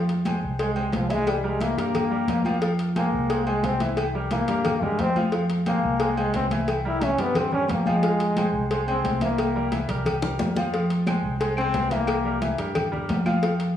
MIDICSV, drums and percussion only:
0, 0, Header, 1, 2, 480
1, 0, Start_track
1, 0, Key_signature, -4, "minor"
1, 0, Tempo, 337838
1, 1809, Time_signature, 4, 2, 24, 8
1, 19562, End_track
2, 0, Start_track
2, 0, Title_t, "Drums"
2, 118, Note_on_c, 9, 63, 35
2, 128, Note_on_c, 9, 56, 70
2, 260, Note_off_c, 9, 63, 0
2, 270, Note_off_c, 9, 56, 0
2, 360, Note_on_c, 9, 63, 97
2, 366, Note_on_c, 9, 56, 71
2, 374, Note_on_c, 9, 66, 67
2, 374, Note_on_c, 9, 68, 113
2, 502, Note_off_c, 9, 63, 0
2, 508, Note_off_c, 9, 56, 0
2, 516, Note_off_c, 9, 66, 0
2, 516, Note_off_c, 9, 68, 0
2, 597, Note_on_c, 9, 63, 36
2, 739, Note_off_c, 9, 63, 0
2, 839, Note_on_c, 9, 63, 37
2, 845, Note_on_c, 9, 56, 110
2, 849, Note_on_c, 9, 68, 75
2, 981, Note_off_c, 9, 63, 0
2, 987, Note_off_c, 9, 56, 0
2, 991, Note_off_c, 9, 68, 0
2, 1080, Note_on_c, 9, 68, 105
2, 1081, Note_on_c, 9, 63, 36
2, 1222, Note_off_c, 9, 68, 0
2, 1223, Note_off_c, 9, 63, 0
2, 1316, Note_on_c, 9, 66, 80
2, 1323, Note_on_c, 9, 63, 89
2, 1326, Note_on_c, 9, 56, 74
2, 1458, Note_off_c, 9, 66, 0
2, 1465, Note_off_c, 9, 63, 0
2, 1468, Note_off_c, 9, 56, 0
2, 1564, Note_on_c, 9, 68, 75
2, 1568, Note_on_c, 9, 56, 69
2, 1569, Note_on_c, 9, 63, 87
2, 1706, Note_off_c, 9, 68, 0
2, 1710, Note_off_c, 9, 56, 0
2, 1711, Note_off_c, 9, 63, 0
2, 1803, Note_on_c, 9, 68, 110
2, 1808, Note_on_c, 9, 56, 95
2, 1811, Note_on_c, 9, 63, 34
2, 1945, Note_off_c, 9, 68, 0
2, 1950, Note_off_c, 9, 56, 0
2, 1953, Note_off_c, 9, 63, 0
2, 2046, Note_on_c, 9, 63, 35
2, 2188, Note_off_c, 9, 63, 0
2, 2281, Note_on_c, 9, 63, 81
2, 2292, Note_on_c, 9, 56, 73
2, 2292, Note_on_c, 9, 66, 65
2, 2292, Note_on_c, 9, 68, 73
2, 2423, Note_off_c, 9, 63, 0
2, 2434, Note_off_c, 9, 56, 0
2, 2434, Note_off_c, 9, 66, 0
2, 2434, Note_off_c, 9, 68, 0
2, 2517, Note_on_c, 9, 63, 38
2, 2536, Note_on_c, 9, 56, 78
2, 2659, Note_off_c, 9, 63, 0
2, 2678, Note_off_c, 9, 56, 0
2, 2761, Note_on_c, 9, 63, 36
2, 2761, Note_on_c, 9, 64, 80
2, 2768, Note_on_c, 9, 56, 111
2, 2771, Note_on_c, 9, 68, 101
2, 2903, Note_off_c, 9, 63, 0
2, 2903, Note_off_c, 9, 64, 0
2, 2910, Note_off_c, 9, 56, 0
2, 2913, Note_off_c, 9, 68, 0
2, 2999, Note_on_c, 9, 63, 35
2, 3141, Note_off_c, 9, 63, 0
2, 3235, Note_on_c, 9, 63, 82
2, 3244, Note_on_c, 9, 56, 72
2, 3257, Note_on_c, 9, 66, 77
2, 3257, Note_on_c, 9, 68, 77
2, 3377, Note_off_c, 9, 63, 0
2, 3386, Note_off_c, 9, 56, 0
2, 3400, Note_off_c, 9, 66, 0
2, 3400, Note_off_c, 9, 68, 0
2, 3480, Note_on_c, 9, 63, 89
2, 3493, Note_on_c, 9, 68, 111
2, 3622, Note_off_c, 9, 63, 0
2, 3635, Note_off_c, 9, 68, 0
2, 3713, Note_on_c, 9, 63, 36
2, 3721, Note_on_c, 9, 56, 107
2, 3855, Note_off_c, 9, 63, 0
2, 3863, Note_off_c, 9, 56, 0
2, 3963, Note_on_c, 9, 63, 35
2, 3967, Note_on_c, 9, 56, 72
2, 4105, Note_off_c, 9, 63, 0
2, 4109, Note_off_c, 9, 56, 0
2, 4207, Note_on_c, 9, 63, 94
2, 4210, Note_on_c, 9, 56, 73
2, 4211, Note_on_c, 9, 66, 60
2, 4211, Note_on_c, 9, 68, 116
2, 4349, Note_off_c, 9, 63, 0
2, 4352, Note_off_c, 9, 56, 0
2, 4353, Note_off_c, 9, 66, 0
2, 4353, Note_off_c, 9, 68, 0
2, 4444, Note_on_c, 9, 63, 35
2, 4586, Note_off_c, 9, 63, 0
2, 4688, Note_on_c, 9, 56, 107
2, 4689, Note_on_c, 9, 63, 38
2, 4695, Note_on_c, 9, 68, 81
2, 4830, Note_off_c, 9, 56, 0
2, 4831, Note_off_c, 9, 63, 0
2, 4837, Note_off_c, 9, 68, 0
2, 4924, Note_on_c, 9, 63, 37
2, 4928, Note_on_c, 9, 68, 116
2, 5066, Note_off_c, 9, 63, 0
2, 5070, Note_off_c, 9, 68, 0
2, 5165, Note_on_c, 9, 63, 88
2, 5167, Note_on_c, 9, 66, 78
2, 5170, Note_on_c, 9, 56, 73
2, 5307, Note_off_c, 9, 63, 0
2, 5309, Note_off_c, 9, 66, 0
2, 5313, Note_off_c, 9, 56, 0
2, 5401, Note_on_c, 9, 63, 88
2, 5404, Note_on_c, 9, 56, 67
2, 5406, Note_on_c, 9, 68, 71
2, 5544, Note_off_c, 9, 63, 0
2, 5547, Note_off_c, 9, 56, 0
2, 5548, Note_off_c, 9, 68, 0
2, 5642, Note_on_c, 9, 56, 101
2, 5651, Note_on_c, 9, 63, 36
2, 5654, Note_on_c, 9, 68, 110
2, 5784, Note_off_c, 9, 56, 0
2, 5793, Note_off_c, 9, 63, 0
2, 5796, Note_off_c, 9, 68, 0
2, 5895, Note_on_c, 9, 63, 34
2, 6037, Note_off_c, 9, 63, 0
2, 6119, Note_on_c, 9, 56, 73
2, 6126, Note_on_c, 9, 63, 90
2, 6131, Note_on_c, 9, 66, 61
2, 6131, Note_on_c, 9, 68, 76
2, 6261, Note_off_c, 9, 56, 0
2, 6268, Note_off_c, 9, 63, 0
2, 6273, Note_off_c, 9, 66, 0
2, 6273, Note_off_c, 9, 68, 0
2, 6364, Note_on_c, 9, 56, 78
2, 6369, Note_on_c, 9, 63, 36
2, 6506, Note_off_c, 9, 56, 0
2, 6511, Note_off_c, 9, 63, 0
2, 6602, Note_on_c, 9, 56, 119
2, 6610, Note_on_c, 9, 63, 38
2, 6610, Note_on_c, 9, 64, 89
2, 6615, Note_on_c, 9, 68, 104
2, 6744, Note_off_c, 9, 56, 0
2, 6752, Note_off_c, 9, 63, 0
2, 6752, Note_off_c, 9, 64, 0
2, 6757, Note_off_c, 9, 68, 0
2, 6849, Note_on_c, 9, 63, 34
2, 6849, Note_on_c, 9, 64, 74
2, 6991, Note_off_c, 9, 63, 0
2, 6991, Note_off_c, 9, 64, 0
2, 7086, Note_on_c, 9, 56, 69
2, 7097, Note_on_c, 9, 63, 91
2, 7097, Note_on_c, 9, 66, 78
2, 7097, Note_on_c, 9, 68, 74
2, 7228, Note_off_c, 9, 56, 0
2, 7239, Note_off_c, 9, 66, 0
2, 7239, Note_off_c, 9, 68, 0
2, 7240, Note_off_c, 9, 63, 0
2, 7331, Note_on_c, 9, 63, 81
2, 7331, Note_on_c, 9, 68, 102
2, 7473, Note_off_c, 9, 63, 0
2, 7473, Note_off_c, 9, 68, 0
2, 7560, Note_on_c, 9, 56, 98
2, 7702, Note_off_c, 9, 56, 0
2, 7807, Note_on_c, 9, 56, 69
2, 7810, Note_on_c, 9, 63, 34
2, 7949, Note_off_c, 9, 56, 0
2, 7952, Note_off_c, 9, 63, 0
2, 8044, Note_on_c, 9, 56, 69
2, 8049, Note_on_c, 9, 63, 93
2, 8050, Note_on_c, 9, 66, 67
2, 8050, Note_on_c, 9, 68, 117
2, 8187, Note_off_c, 9, 56, 0
2, 8191, Note_off_c, 9, 63, 0
2, 8192, Note_off_c, 9, 66, 0
2, 8192, Note_off_c, 9, 68, 0
2, 8291, Note_on_c, 9, 63, 34
2, 8433, Note_off_c, 9, 63, 0
2, 8520, Note_on_c, 9, 56, 108
2, 8527, Note_on_c, 9, 68, 81
2, 8530, Note_on_c, 9, 63, 34
2, 8662, Note_off_c, 9, 56, 0
2, 8669, Note_off_c, 9, 68, 0
2, 8672, Note_off_c, 9, 63, 0
2, 8772, Note_on_c, 9, 68, 108
2, 8782, Note_on_c, 9, 63, 36
2, 8915, Note_off_c, 9, 68, 0
2, 8924, Note_off_c, 9, 63, 0
2, 9004, Note_on_c, 9, 56, 74
2, 9009, Note_on_c, 9, 66, 79
2, 9011, Note_on_c, 9, 63, 82
2, 9147, Note_off_c, 9, 56, 0
2, 9151, Note_off_c, 9, 66, 0
2, 9153, Note_off_c, 9, 63, 0
2, 9245, Note_on_c, 9, 63, 86
2, 9252, Note_on_c, 9, 68, 69
2, 9254, Note_on_c, 9, 56, 72
2, 9387, Note_off_c, 9, 63, 0
2, 9394, Note_off_c, 9, 68, 0
2, 9396, Note_off_c, 9, 56, 0
2, 9486, Note_on_c, 9, 63, 36
2, 9491, Note_on_c, 9, 56, 102
2, 9499, Note_on_c, 9, 68, 100
2, 9628, Note_off_c, 9, 63, 0
2, 9633, Note_off_c, 9, 56, 0
2, 9641, Note_off_c, 9, 68, 0
2, 9729, Note_on_c, 9, 63, 37
2, 9872, Note_off_c, 9, 63, 0
2, 9966, Note_on_c, 9, 63, 99
2, 9968, Note_on_c, 9, 56, 77
2, 9984, Note_on_c, 9, 66, 61
2, 9984, Note_on_c, 9, 68, 73
2, 10108, Note_off_c, 9, 63, 0
2, 10111, Note_off_c, 9, 56, 0
2, 10126, Note_off_c, 9, 66, 0
2, 10126, Note_off_c, 9, 68, 0
2, 10207, Note_on_c, 9, 56, 75
2, 10208, Note_on_c, 9, 63, 36
2, 10350, Note_off_c, 9, 56, 0
2, 10350, Note_off_c, 9, 63, 0
2, 10439, Note_on_c, 9, 63, 35
2, 10439, Note_on_c, 9, 64, 86
2, 10448, Note_on_c, 9, 56, 115
2, 10460, Note_on_c, 9, 68, 105
2, 10581, Note_off_c, 9, 63, 0
2, 10581, Note_off_c, 9, 64, 0
2, 10590, Note_off_c, 9, 56, 0
2, 10602, Note_off_c, 9, 68, 0
2, 10680, Note_on_c, 9, 63, 36
2, 10680, Note_on_c, 9, 64, 67
2, 10822, Note_off_c, 9, 63, 0
2, 10822, Note_off_c, 9, 64, 0
2, 10918, Note_on_c, 9, 63, 83
2, 10932, Note_on_c, 9, 56, 75
2, 10942, Note_on_c, 9, 66, 79
2, 10942, Note_on_c, 9, 68, 83
2, 11060, Note_off_c, 9, 63, 0
2, 11074, Note_off_c, 9, 56, 0
2, 11084, Note_off_c, 9, 66, 0
2, 11084, Note_off_c, 9, 68, 0
2, 11163, Note_on_c, 9, 63, 94
2, 11179, Note_on_c, 9, 68, 103
2, 11305, Note_off_c, 9, 63, 0
2, 11321, Note_off_c, 9, 68, 0
2, 11407, Note_on_c, 9, 56, 99
2, 11408, Note_on_c, 9, 63, 34
2, 11550, Note_off_c, 9, 56, 0
2, 11550, Note_off_c, 9, 63, 0
2, 11651, Note_on_c, 9, 56, 71
2, 11660, Note_on_c, 9, 63, 38
2, 11793, Note_off_c, 9, 56, 0
2, 11802, Note_off_c, 9, 63, 0
2, 11885, Note_on_c, 9, 63, 93
2, 11887, Note_on_c, 9, 56, 78
2, 11898, Note_on_c, 9, 66, 65
2, 11898, Note_on_c, 9, 68, 112
2, 12027, Note_off_c, 9, 63, 0
2, 12029, Note_off_c, 9, 56, 0
2, 12040, Note_off_c, 9, 66, 0
2, 12040, Note_off_c, 9, 68, 0
2, 12124, Note_on_c, 9, 63, 35
2, 12266, Note_off_c, 9, 63, 0
2, 12369, Note_on_c, 9, 63, 32
2, 12371, Note_on_c, 9, 56, 108
2, 12374, Note_on_c, 9, 68, 83
2, 12511, Note_off_c, 9, 63, 0
2, 12514, Note_off_c, 9, 56, 0
2, 12516, Note_off_c, 9, 68, 0
2, 12604, Note_on_c, 9, 63, 36
2, 12615, Note_on_c, 9, 68, 115
2, 12746, Note_off_c, 9, 63, 0
2, 12757, Note_off_c, 9, 68, 0
2, 12850, Note_on_c, 9, 66, 79
2, 12853, Note_on_c, 9, 56, 75
2, 12853, Note_on_c, 9, 63, 82
2, 12992, Note_off_c, 9, 66, 0
2, 12995, Note_off_c, 9, 56, 0
2, 12995, Note_off_c, 9, 63, 0
2, 13085, Note_on_c, 9, 63, 87
2, 13086, Note_on_c, 9, 56, 70
2, 13096, Note_on_c, 9, 68, 70
2, 13227, Note_off_c, 9, 63, 0
2, 13228, Note_off_c, 9, 56, 0
2, 13238, Note_off_c, 9, 68, 0
2, 13330, Note_on_c, 9, 56, 105
2, 13330, Note_on_c, 9, 63, 39
2, 13339, Note_on_c, 9, 68, 97
2, 13472, Note_off_c, 9, 56, 0
2, 13472, Note_off_c, 9, 63, 0
2, 13481, Note_off_c, 9, 68, 0
2, 13573, Note_on_c, 9, 63, 36
2, 13715, Note_off_c, 9, 63, 0
2, 13806, Note_on_c, 9, 56, 75
2, 13806, Note_on_c, 9, 63, 97
2, 13811, Note_on_c, 9, 66, 67
2, 13811, Note_on_c, 9, 68, 72
2, 13948, Note_off_c, 9, 56, 0
2, 13948, Note_off_c, 9, 63, 0
2, 13953, Note_off_c, 9, 66, 0
2, 13953, Note_off_c, 9, 68, 0
2, 14046, Note_on_c, 9, 56, 75
2, 14047, Note_on_c, 9, 63, 37
2, 14188, Note_off_c, 9, 56, 0
2, 14189, Note_off_c, 9, 63, 0
2, 14284, Note_on_c, 9, 63, 39
2, 14284, Note_on_c, 9, 64, 85
2, 14293, Note_on_c, 9, 56, 108
2, 14297, Note_on_c, 9, 68, 107
2, 14426, Note_off_c, 9, 63, 0
2, 14426, Note_off_c, 9, 64, 0
2, 14435, Note_off_c, 9, 56, 0
2, 14439, Note_off_c, 9, 68, 0
2, 14523, Note_on_c, 9, 60, 88
2, 14524, Note_on_c, 9, 63, 39
2, 14524, Note_on_c, 9, 64, 74
2, 14665, Note_off_c, 9, 60, 0
2, 14666, Note_off_c, 9, 63, 0
2, 14666, Note_off_c, 9, 64, 0
2, 14763, Note_on_c, 9, 56, 71
2, 14763, Note_on_c, 9, 61, 81
2, 14764, Note_on_c, 9, 63, 79
2, 14771, Note_on_c, 9, 66, 73
2, 14771, Note_on_c, 9, 68, 76
2, 14905, Note_off_c, 9, 56, 0
2, 14905, Note_off_c, 9, 61, 0
2, 14906, Note_off_c, 9, 63, 0
2, 14913, Note_off_c, 9, 66, 0
2, 14913, Note_off_c, 9, 68, 0
2, 14997, Note_on_c, 9, 63, 85
2, 15008, Note_on_c, 9, 61, 83
2, 15015, Note_on_c, 9, 68, 108
2, 15139, Note_off_c, 9, 63, 0
2, 15150, Note_off_c, 9, 61, 0
2, 15157, Note_off_c, 9, 68, 0
2, 15247, Note_on_c, 9, 63, 39
2, 15253, Note_on_c, 9, 56, 108
2, 15389, Note_off_c, 9, 63, 0
2, 15395, Note_off_c, 9, 56, 0
2, 15488, Note_on_c, 9, 63, 35
2, 15490, Note_on_c, 9, 56, 71
2, 15630, Note_off_c, 9, 63, 0
2, 15632, Note_off_c, 9, 56, 0
2, 15723, Note_on_c, 9, 63, 92
2, 15730, Note_on_c, 9, 56, 70
2, 15733, Note_on_c, 9, 75, 70
2, 15740, Note_on_c, 9, 66, 70
2, 15740, Note_on_c, 9, 68, 110
2, 15865, Note_off_c, 9, 63, 0
2, 15872, Note_off_c, 9, 56, 0
2, 15875, Note_off_c, 9, 75, 0
2, 15882, Note_off_c, 9, 66, 0
2, 15882, Note_off_c, 9, 68, 0
2, 15961, Note_on_c, 9, 63, 34
2, 16103, Note_off_c, 9, 63, 0
2, 16206, Note_on_c, 9, 63, 34
2, 16207, Note_on_c, 9, 56, 110
2, 16213, Note_on_c, 9, 68, 86
2, 16349, Note_off_c, 9, 56, 0
2, 16349, Note_off_c, 9, 63, 0
2, 16356, Note_off_c, 9, 68, 0
2, 16440, Note_on_c, 9, 75, 62
2, 16453, Note_on_c, 9, 68, 111
2, 16454, Note_on_c, 9, 63, 37
2, 16582, Note_off_c, 9, 75, 0
2, 16595, Note_off_c, 9, 68, 0
2, 16596, Note_off_c, 9, 63, 0
2, 16681, Note_on_c, 9, 63, 89
2, 16682, Note_on_c, 9, 56, 79
2, 16685, Note_on_c, 9, 66, 83
2, 16824, Note_off_c, 9, 56, 0
2, 16824, Note_off_c, 9, 63, 0
2, 16827, Note_off_c, 9, 66, 0
2, 16925, Note_on_c, 9, 68, 73
2, 16927, Note_on_c, 9, 56, 73
2, 16927, Note_on_c, 9, 63, 87
2, 17067, Note_off_c, 9, 68, 0
2, 17069, Note_off_c, 9, 56, 0
2, 17069, Note_off_c, 9, 63, 0
2, 17156, Note_on_c, 9, 68, 117
2, 17157, Note_on_c, 9, 75, 63
2, 17160, Note_on_c, 9, 63, 33
2, 17165, Note_on_c, 9, 56, 102
2, 17298, Note_off_c, 9, 68, 0
2, 17299, Note_off_c, 9, 75, 0
2, 17302, Note_off_c, 9, 63, 0
2, 17307, Note_off_c, 9, 56, 0
2, 17402, Note_on_c, 9, 63, 37
2, 17544, Note_off_c, 9, 63, 0
2, 17645, Note_on_c, 9, 63, 88
2, 17645, Note_on_c, 9, 66, 62
2, 17645, Note_on_c, 9, 68, 69
2, 17646, Note_on_c, 9, 56, 72
2, 17787, Note_off_c, 9, 63, 0
2, 17787, Note_off_c, 9, 66, 0
2, 17787, Note_off_c, 9, 68, 0
2, 17788, Note_off_c, 9, 56, 0
2, 17882, Note_on_c, 9, 56, 74
2, 17891, Note_on_c, 9, 63, 37
2, 18024, Note_off_c, 9, 56, 0
2, 18033, Note_off_c, 9, 63, 0
2, 18120, Note_on_c, 9, 68, 105
2, 18120, Note_on_c, 9, 75, 69
2, 18122, Note_on_c, 9, 56, 108
2, 18131, Note_on_c, 9, 63, 36
2, 18131, Note_on_c, 9, 64, 94
2, 18262, Note_off_c, 9, 75, 0
2, 18263, Note_off_c, 9, 68, 0
2, 18264, Note_off_c, 9, 56, 0
2, 18273, Note_off_c, 9, 63, 0
2, 18273, Note_off_c, 9, 64, 0
2, 18380, Note_on_c, 9, 63, 38
2, 18380, Note_on_c, 9, 64, 79
2, 18522, Note_off_c, 9, 63, 0
2, 18522, Note_off_c, 9, 64, 0
2, 18603, Note_on_c, 9, 56, 69
2, 18609, Note_on_c, 9, 66, 78
2, 18609, Note_on_c, 9, 68, 80
2, 18617, Note_on_c, 9, 63, 93
2, 18745, Note_off_c, 9, 56, 0
2, 18751, Note_off_c, 9, 66, 0
2, 18751, Note_off_c, 9, 68, 0
2, 18759, Note_off_c, 9, 63, 0
2, 18841, Note_on_c, 9, 75, 61
2, 18842, Note_on_c, 9, 68, 109
2, 18852, Note_on_c, 9, 63, 94
2, 18983, Note_off_c, 9, 75, 0
2, 18984, Note_off_c, 9, 68, 0
2, 18994, Note_off_c, 9, 63, 0
2, 19081, Note_on_c, 9, 56, 106
2, 19088, Note_on_c, 9, 63, 36
2, 19223, Note_off_c, 9, 56, 0
2, 19230, Note_off_c, 9, 63, 0
2, 19323, Note_on_c, 9, 56, 73
2, 19334, Note_on_c, 9, 63, 36
2, 19465, Note_off_c, 9, 56, 0
2, 19476, Note_off_c, 9, 63, 0
2, 19562, End_track
0, 0, End_of_file